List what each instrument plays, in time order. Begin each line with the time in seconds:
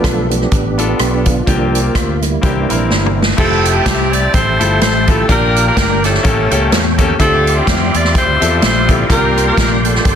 Already playing: grand piano G2 B3 D4 F4 G4, tonewheel organ F3 A3 B3 D4 F4
0.03 fingered electric bass B1, tonewheel organ A4, kick, cross-stick, closed hi-hat
0.29 tonewheel organ F3 A3 B3 D4 G4, closed hi-hat
0.41 cross-stick
0.52 fingered electric bass A1, kick, closed hi-hat
0.78 grand piano B3 D4 F4 A4, closed hi-hat
0.88 tonewheel organ B3 D4 G4
0.99 fingered electric bass B1, cross-stick, closed hi-hat
1.26 tonewheel organ F4, kick, closed hi-hat
1.46 fingered electric bass C2, grand piano C3 A#3 C4 F4 G4, tonewheel organ F3 A#3 D4 G4, kick, closed hi-hat
1.75 closed hi-hat
1.95 fingered electric bass D2, tonewheel organ F4, kick, cross-stick, closed hi-hat
2.22 tonewheel organ G3 A#3 E4, cross-stick, closed hi-hat
2.42 fingered electric bass C2, grand piano C3 A#3 C4 E4 G4, tonewheel organ E3 A#3 D4, kick, closed hi-hat
2.69 fingered electric bass A#1, grand piano A#3 C4 E4 A#4, closed hi-hat
2.90 fingered electric bass G1, snare
3.06 mid tom
3.22 snare
3.37 fingered electric bass F1, grand piano F3 A3 E4 G4, saxophone section C4 E4 A4, tonewheel organ G4 E5 G5 A5, kick, crash
3.65 closed hi-hat
3.74 saxophone section C4 E4 G4
3.86 fingered electric bass C2, kick, snare, closed hi-hat
4.12 saxophone section D5, closed hi-hat
4.33 fingered electric bass A1, saxophone section E4 A4 C5, kick, closed hi-hat
4.59 fingered electric bass G1, grand piano F3 A3 E4 A4, closed hi-hat
4.81 fingered electric bass A1, saxophone section C5, snare, closed hi-hat
5.07 grand piano A3 E4 F4 A4, saxophone section A4, kick, closed hi-hat
5.28 fingered electric bass A#1, grand piano A#2 A#3 D4 F4 G4, saxophone section D4 G4 A#4, tonewheel organ G4 D5, kick, closed hi-hat
5.56 closed hi-hat
5.67 saxophone section D4 G4 A#4
5.77 fingered electric bass G1, kick, snare, closed hi-hat
6.04 saxophone section C#4 E4 A4, snare, closed hi-hat
6.14 snare
6.23 fingered electric bass A1, grand piano A2 A#3 C#4 G4 A4, tonewheel organ A4 C#5 G5, kick, closed hi-hat
6.50 fingered electric bass C#2, grand piano A#3 C#4 G4 A4, closed hi-hat
6.72 fingered electric bass E2, snare, closed hi-hat
6.98 grand piano A#3 C#4 G4 A4, kick, closed hi-hat
7.19 fingered electric bass D2, grand piano D3 C4 F4 G4 E5, saxophone section C4 F4 A4, tonewheel organ G4 D5 E5 C6, kick, closed hi-hat
7.47 closed hi-hat
7.57 saxophone section C4 E4 G4
7.67 fingered electric bass F2, kick, snare, closed hi-hat
7.94 fingered electric bass E2, saxophone section D5, closed hi-hat
8.04 snare
8.15 fingered electric bass D2, saxophone section E4 F4 C5, kick, closed hi-hat
8.40 fingered electric bass E2, grand piano F3 C4 A4 E5, closed hi-hat
8.62 fingered electric bass A#1, saxophone section C5, snare, closed hi-hat
8.88 grand piano C4 E4 F4 G4, saxophone section A4, kick, closed hi-hat
9.08 fingered electric bass C2, grand piano C3 A#3 C4 F4 G4, tonewheel organ A#3 G5 C6, saxophone section F4 G4 A#4, kick, closed hi-hat
9.37 closed hi-hat
9.47 saxophone section F4 G4 A#4
9.57 fingered electric bass A#1, kick, snare, closed hi-hat
9.85 saxophone section F4 A4, closed hi-hat
9.95 snare
10.05 fingered electric bass G1, kick, closed hi-hat